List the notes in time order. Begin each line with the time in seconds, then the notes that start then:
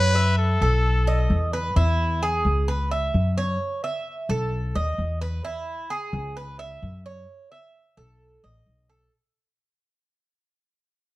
Already playing: F#2 B4 C#5
0.15 E5
0.38 A4
0.61 B1 A4
1.07 D#5
1.30 E2
1.53 B4
1.76 E2 E4
2.23 G#4
2.45 C#2
2.68 B4
2.91 E5
3.14 F#2
3.38 C#5
3.84 E5
4.29 B1 A4
4.75 D#2 D#5
4.98 E2
5.21 B4
5.45 E4
5.90 G#4
6.13 C#2
6.37 B4
6.59 E5
6.82 F#2
7.06 C#5
7.52 E5
7.97 B1 A4
8.43 A1 D#5
8.66 B1
8.89 A4